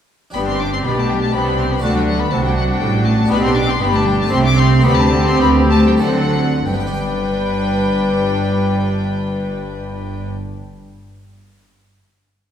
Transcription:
0.30 double bass section G1, harpsichord D4 G4 D5
0.35 cello section G2, harpsichord G2, cello B3, viola section D4, violin section G4 B5
0.48 cello C4, violin section C6
0.60 cello D4, violin section D6
0.73 cello C4, violin section C6
0.84 double bass section B1, cello section B2, harpsichord B2, cello B3, viola section D4, violin section G4 B5
0.97 cello A3, violin section A5
1.09 cello G3, violin section G5
1.22 cello A3, violin section A5
1.33 double bass section C2, cello section C3, harpsichord C3, cello B3, viola section D4, violin section G4 B5
1.59 cello C4, violin section C6
1.70 cello B3, violin section B5
1.78 double bass section D2, cello A3, harpsichord D4 F#4 D5
1.82 cello section D3, harpsichord D3, viola section D4, violin section F#4 A5
1.94 cello G3, violin section G5
2.06 cello F#3, violin section F#5
2.19 cello B3, violin section B5
2.31 double bass section C2, cello section C3, harpsichord C3, cello A3, viola section D4, violin section F#4 A5
2.42 cello G3, violin section G5
2.56 cello F#3, violin section F#5
2.68 cello G3, violin section G5
2.80 double bass section A1, harpsichord A2, cello section A2
3.04 cello A3, violin section A5
3.25 cello B3, harpsichord D4 G4 D5
3.29 double bass section B1, cello section B2, harpsichord B2, viola section D4, violin section G4 B5
3.42 cello C4, violin section C6
3.54 cello D4, violin section D6
3.66 cello C4, violin section C6
3.79 double bass section G1, cello section G2, harpsichord G2, cello B3, viola section D4, violin section G4 B5
3.91 cello A3, violin section A5
4.04 cello G3, violin section G5
4.18 cello A3, violin section A5
4.26 harpsichord A3 G4 C5, cello C4
4.31 double bass section C2, harpsichord C3, cello section C3, viola section A3, violin section G4 C6
4.42 cello D4, violin section D6
4.57 cello C4, violin section C6
4.80 harpsichord A3 G4 C5, cello B3
4.84 double bass section D2, cello section D3, harpsichord D3, viola section C4, violin section G4 B5
4.97 cello A3, violin section A5
5.25 cello C4, violin section C6
5.39 cello section D2, harpsichord D2, double bass section D2, cello B3, violin section B5
5.70 cello A3, violin section A5
5.85 cello G3, violin section G5
5.97 harpsichord A3 A4 C5
6.01 double bass section D2, harpsichord D3, cello section D3, cello F#3, viola section C4, violin section A4 F#5
6.66 double bass section G1, cello section G2, cello G3, harpsichord G3, viola section D4, violin section B4 G5
6.73 harpsichord B3
6.80 harpsichord G4
6.87 harpsichord D5
6.94 harpsichord G5

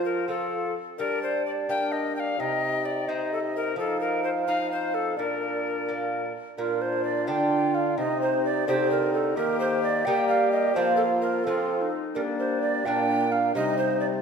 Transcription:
Already playing: lute F3 A#3 C4 F4, bassoon F3, recorder F4, trombone F4
0.05 recorder A#4
0.28 lute C4 F4, trombone F4, recorder A4
0.98 bassoon G3, lute G3, trombone D4, recorder A#4 D5
1.23 recorder C5
1.46 recorder D5
1.69 lute A#3 D4, trombone D4, recorder A#4 G5
1.92 recorder D#5
2.16 recorder F5 G5
2.39 bassoon C3, lute C3, trombone D#4, recorder D#5 G5
2.85 recorder D5
3.07 lute C4 D#4, trombone D#4, recorder C5 D#5
3.33 recorder A4
3.56 recorder A#4
3.76 lute F3, bassoon F3, trombone D#4, recorder A4 F5
4.01 recorder A#4
4.24 recorder C5
4.47 lute C4 D#4, trombone D#4, recorder F5
4.72 recorder C5
4.94 recorder A4
5.17 bassoon A#2, lute A#2, trombone D4, recorder A#4 D5
5.88 lute A#3 D4
6.58 bassoon A#2, lute A#2, trombone D4, recorder F4 A#4
6.81 recorder C5
7.05 recorder D5
7.27 lute D3 D4, bassoon D3, recorder G5
7.75 recorder F5
7.98 lute C3, bassoon C3, trombone C4, recorder D#4 D#5
8.21 recorder C5
8.45 recorder D5
8.67 lute C3 C4 G4 D#5, bassoon D3, trombone C4, recorder D#4 C5
8.91 recorder A#4
9.14 recorder A4
9.36 bassoon D#3, lute D#3, trombone A#3, recorder G4 A#4
9.60 recorder C5
9.83 recorder D5
10.05 bassoon G3, lute G3 A#3 D#4 G4, trombone A#3, recorder G4 G5
10.29 recorder F5
10.52 recorder D#5
10.75 bassoon F3, lute F3 A#3 C4 F4, trombone A#3, recorder F4 C5
10.97 recorder A4
11.22 recorder A#4
11.44 bassoon F3, lute F3 C4 F4, trombone C4, recorder F4 A4
11.82 recorder D#4
12.15 bassoon G3, lute G3, trombone A#3, recorder D4 A#4
12.39 recorder C5
12.62 recorder D5
12.86 bassoon A#2, lute A#2 A#3 D4, trombone A#3, recorder D4 G5
13.32 recorder F5
13.54 bassoon C3, lute C3, trombone G3, recorder D#4 D#5
13.78 recorder C5
14.00 recorder D5

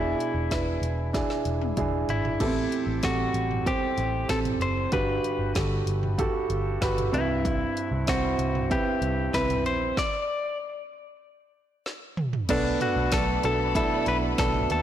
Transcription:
Already playing: picked electric bass E1, upright piano B2 D4 E4 G#4, clean electric guitar E4
0.20 closed hi-hat
0.34 picked electric bass E1
0.51 picked electric bass E1, upright piano D4 E4 B4, kick, snare, closed hi-hat
0.82 picked electric bass E1, closed hi-hat
1.13 upright piano D4 E4 G#4, kick, snare, closed hi-hat
1.30 snare
1.45 picked electric bass E1, closed hi-hat
1.61 high tom
1.77 picked electric bass E1, upright piano D4 E4 G#4, kick, closed hi-hat, mid tom
2.08 picked electric bass G#1, clean electric guitar E4, closed hi-hat, floor tom
2.25 floor tom
2.40 picked electric bass A1, upright piano A2 E3 B3 G4 A4, kick, closed hi-hat, crash
2.46 upright piano C4
2.72 closed hi-hat
2.87 picked electric bass A1
3.03 picked electric bass A1, upright piano G3 C4 A4, clean electric guitar F#4, kick, snare, closed hi-hat
3.34 picked electric bass A1, closed hi-hat
3.51 floor tom
3.66 upright piano C4 G4 C5, clean electric guitar G4, kick, closed hi-hat
3.98 picked electric bass A1, closed hi-hat
4.29 picked electric bass A1, upright piano C4 G4 A4, clean electric guitar A4, kick, snare, closed hi-hat
4.45 closed hi-hat, floor tom
4.60 picked electric bass F#1, clean electric guitar C5, closed hi-hat
4.92 picked electric bass G1, upright piano G2 D3 F#4 G4 B4, clean electric guitar B4, kick, closed hi-hat
5.24 closed hi-hat
5.39 picked electric bass G1
5.55 picked electric bass G1, upright piano F#4 G4 A4, kick, snare, closed hi-hat
5.86 picked electric bass G1, closed hi-hat
6.03 floor tom
6.18 upright piano F#4 G4 A4, kick, closed hi-hat
6.50 picked electric bass G1, closed hi-hat
6.81 picked electric bass G1, upright piano F#4 G4 B4, kick, snare, closed hi-hat
6.98 closed hi-hat, floor tom
7.12 picked electric bass C2, upright piano G2 C4 E4 B4, clean electric guitar E4, closed hi-hat
7.45 kick, closed hi-hat
7.77 closed hi-hat
7.91 picked electric bass C2
8.07 upright piano C4 E4 C5, clean electric guitar F#4, kick, snare, closed hi-hat
8.39 picked electric bass C2, closed hi-hat
8.55 floor tom
8.70 upright piano C4 E4 B4, clean electric guitar G4, kick, closed hi-hat
9.02 picked electric bass C2, closed hi-hat
9.34 picked electric bass C2, upright piano C4 E4 B4, clean electric guitar B4, kick, snare, closed hi-hat
9.50 closed hi-hat, floor tom
9.65 picked electric bass A#1, clean electric guitar C5, closed hi-hat
9.97 clean electric guitar D5, kick, snare
11.86 snare
12.17 mid tom
12.33 floor tom
12.49 picked electric bass B1, clean electric guitar B2 F#3 A3 D4 F#4, upright piano B3 D4 A4, string section A4 D5 B5, kick, closed hi-hat, crash
12.81 clean electric guitar A3 D4 F#4, closed hi-hat, floor tom
12.96 picked electric bass B1
13.12 picked electric bass B1, clean electric guitar F#3 A3 D4 F#4 A4, upright piano B3 D4 A4, kick, snare, closed hi-hat
13.43 picked electric bass B1, clean electric guitar A3 D4 F#4 A4, upright piano B3 D4 A4, closed hi-hat
13.75 clean electric guitar B2 F#3 A3 D4 F#4 A4, upright piano B3 D4 E4, kick, closed hi-hat
14.06 picked electric bass B1, clean electric guitar A3 D4 F#4 B4, closed hi-hat
14.38 picked electric bass B1, clean electric guitar F#3 A3 D4 F#4 A4, upright piano B3 D4 A4, kick, snare, closed hi-hat
14.54 floor tom
14.69 picked electric bass D#2, clean electric guitar A3 D4 F#4 A4, closed hi-hat

